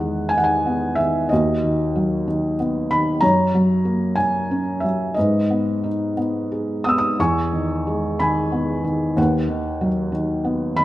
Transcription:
felt piano
Already playing: E2 D#3 D#5 F#5
0.00 G#3
0.29 G#5
0.33 D#3
0.38 F#5
0.44 G#5
0.66 B3
0.95 D#3 E5
1.29 D#2 F#4 D#5
1.64 D#3
1.96 F#3
2.28 D#3
2.60 B3
2.91 D#3 B5
3.21 F#2 C#5 A#5
3.54 F#3
3.85 A#3
4.16 F#3 G#5
4.51 C#4
4.80 F#3 E5
5.14 G#2 B4 D#5
5.50 B3
5.84 D#4
6.17 B3
6.52 G#4
6.84 B3 D#6
6.89 E6
6.98 D#6
7.19 E2 G#5 C#6
7.53 D#3
7.87 G#3
8.19 D#3 G#5 B5
8.52 B3
8.84 D#3
9.17 D#2 B4 F#5
9.49 D#3
9.81 F#3
10.12 D#3
10.44 B3
10.76 D#3 B5

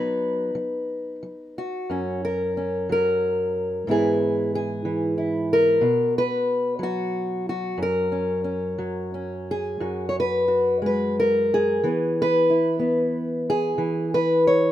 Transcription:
steel-string acoustic guitar
Already playing: B2 F#3 B3 D#4 B4
0.55 F#3
1.23 F#3
1.58 F#4
1.90 F#2 C#4
2.25 A#4
2.57 C#4
2.89 F#3 A#4
3.87 G#2 E3 B3 E4 G#4
4.55 G#4
4.85 E3
5.18 E4
5.53 A#4
5.81 B2
6.18 B4
6.79 F#3
6.83 F#4
7.49 F#4
7.78 F#2
7.82 A#4
8.12 C#4
8.44 C#4
8.78 F#3
9.14 C#4
9.51 G#4
9.80 F#2 F#4
10.09 C#5
10.20 B4
10.48 F#4
10.82 G#3
10.86 B4
11.20 A#4
11.54 G#4
11.84 E3 B3
12.22 B4
12.50 E4
12.79 B3
13.50 G#4
13.78 E3
14.14 B4
14.47 C#5

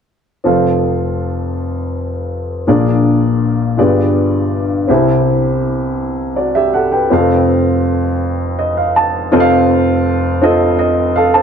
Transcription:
upright piano
0.44 F1 F2 C4 F4 A4 C5 F5
2.67 A#1 A#2 D4 F4 G#4 A#4 D5
3.77 G1 G2 F4 G4 G#4 B4 D5
4.87 C2 C3 C4 E4 G4 C5 E5
6.36 F#4 D5
6.55 G4 E5
6.74 A4 F#5
6.92 B4 G5
7.10 F1 F2 C4 F4 G#4 C5 F5
7.18 A4
8.59 D#5
8.77 F5
8.96 A5
9.32 F1 F2 C4 F4 A4 C5 D#5
9.40 F5
10.42 C4 F4 A4 C5 D#5
10.79 D#5
11.16 A4 F5
11.34 C5 A5

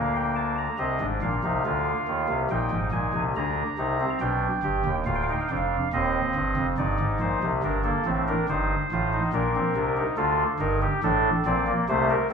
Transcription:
pipe organ
Already playing: D2 D3 A#3 F5
0.16 G5
0.36 A5
0.58 A#5
0.78 C2 C3 C4 D#5
1.01 G#1 G#2 D4
1.22 A#1 A#2 F5
1.43 C2 C3 D#4
1.65 D2 D3 F4
2.08 D#2 D#3
2.29 C2 C3
2.51 A#1 A#2 D#4 G5
2.71 G#1 G#2
2.92 A#1 A#2 G#5
3.14 C2 C3
3.36 D2 D3 D4 A#5
3.78 C2 C3 D#4
4.00 C4
4.21 B1 B2 D4 G5
4.63 G1 G2 G4
4.85 D#1 D#2
5.06 D1 D2 F4 F5
5.15 G5
5.23 F5
5.29 D#4 G5
5.40 F5
5.48 F1 F2 D4 G5
5.57 F5
5.93 D#1 D#2 C4 D#5
6.35 G1 G2
6.56 F1 F2
6.78 G1 G2 D#4 D5
7.00 G#1 G#2
7.20 A#1 A#2 C5
7.43 C2 C3
7.63 G1 G2 D4 A#4
7.84 A#3 A4
8.05 A1 A2 C4
8.28 D4 A#4
8.49 G1 G2 D#4 C5
8.92 A1 A2 F4
9.13 D#4
9.33 A#1 A#2 D4 A#4
9.55 C4
9.76 C2 C3 D4
9.97 D#4
10.17 D2 D3 F4 A4
10.59 G1 G2 D#4 A#4
10.82 G4
11.03 A1 A2 D4 A4
11.46 A#1 A#2 C4 D5
11.67 A#3
11.89 C2 C3 A3 C5
12.09 A#4

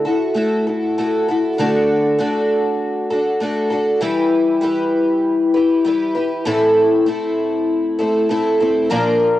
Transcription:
twelve-string acoustic guitar
0.05 E4 F#4 A4
0.34 A3 E4 F#4 A4
0.67 E4 F#4 A4
0.98 A3 E4 F#4 A4
1.28 E4 F#4 A4
1.58 D3 A3 D4 F#4 A4
2.19 A3 D4 F#4 A4
3.10 D4 F#4 A4
3.40 A3 D4 F#4 A4
3.70 D4 F#4 A4
4.01 E3 G3 E4 G4 B4
4.61 G3 E4 G4 B4
5.54 E4 G4 B4
5.85 G3 E4 G4 B4
6.15 E4 G4 B4
6.45 A2 E3 A3 C4 E4 A4
7.06 A3 C4 E4 A4
7.99 A3 C4 E4 A4
8.29 A3 C4 E4 A4
8.60 A3 C4 E4 A4
8.90 A#2 F3 A#3 D4 F4 A#4

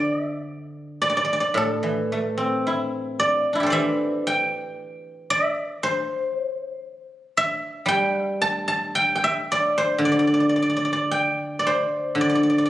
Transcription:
guzheng
Already playing: D3 A3 C4 D4 E4 C5 D5
0.12 D#5
0.24 E5
1.02 D5
1.10 D5
1.17 D5
1.25 D5
1.33 D5
1.40 D5
1.54 A2 A4
1.83 E3
2.12 A3 A#4
2.28 A4
2.38 C4
2.45 A#4
2.60 A4
2.67 E4
3.20 D5
3.53 D4 E4
3.60 G4 A4
3.66 C5 D5
3.72 E3 E5
4.27 G5
5.30 E5
5.83 C5
6.36 C#5
6.51 C5
6.66 C#5
6.80 C5
7.37 E5
7.86 G3 G5
8.20 E5
8.42 A5
8.68 A5
8.95 G5
9.16 G5
9.24 E5
9.52 D5
9.78 C5
9.98 D3
10.05 D5
10.12 D5
10.19 D5
10.27 D5
10.34 D5
10.40 D5
10.49 D5
10.56 D5
10.62 D5
10.70 D5
10.77 D5
10.85 D5
10.93 D5
11.11 G5
11.59 D5
11.67 C5
12.15 D3
12.21 D5
12.30 D5
12.35 D5
12.43 D5
12.50 D5
12.58 D5
12.65 D5

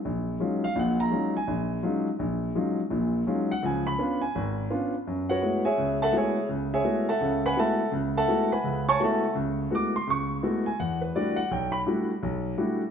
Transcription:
grand piano
0.05 A#1
0.40 F#3 G#3 C#4 D#4 F4
0.64 F5
0.76 A#1 A#2 F#5
1.00 A#5
1.10 F#3 G#3 C#4 D#4 F4
1.37 G#5
1.47 A#1
1.83 F#3 G#3 C#4 D#4 F4
2.19 A#1
2.55 F#3 G#3 C#4 D#4 F4
2.90 A#1 A#2
3.27 F#3 G#3 C#4 D#4 F4
3.51 F#5
3.62 C#2 F3 G#5
3.87 B5
3.99 B3 C#4 D4 F4
4.21 G#5
4.35 G#1
4.70 B3 C#4 D4 F4
5.07 F#2
5.29 F#4 B4 C#5 F#5
5.42 G#3 A3 B3 E4 F#4
5.65 G#4 C#5 E5 G#5
5.78 C#2
6.02 A4 E5 F#5 A5
6.12 G#3 A3 B3 E4 F#4
6.17 G#4 C#5 E5 G#5
6.49 C#2
6.74 G#4 C#5 E5 G#5
6.84 G#3 A3 B3 E4 F#4
7.09 A4 E5 F#5 A5
7.21 C#2 C#3
7.46 B4 F#5 G#5 B5
7.56 G#3 A3 B3 E4 F#4 A4 E5 F#5 A5
7.92 C#2
8.17 A4 E5 F#5 A5
8.28 G#3 A3 B3 E4 F#4
8.52 B4 F#5 G#5 B5
8.64 C#2 C#3
8.89 C#5 G#5 A5 C#6
8.99 G#3 A3 B3 E4 F#4
9.04 A4 E5 F#5 A5
9.35 C#2
9.71 G#3 A3 B3 E4 F#4
9.75 D6
9.96 C6
10.07 C#2 C#6
10.43 G#3 A3 B3 E4 F#4
10.66 G#5
10.79 E2 F#5
11.01 B4
11.15 G3 A3 D4 E4 F#4 D5
11.36 F#5
11.51 B1 G5
11.72 B5
11.86 G3 A3 D4 E4 F#4
12.23 B1
12.57 G3 A3 D4 E4 F#4

